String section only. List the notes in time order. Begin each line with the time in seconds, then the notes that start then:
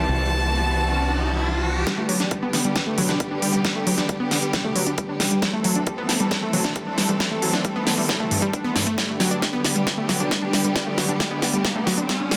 Already playing: E3 G3 C4
0.09 F#4
1.87 D3 G3 B3 G4
5.42 E3 A3 C4 A4
8.98 D3 G3 B3 G4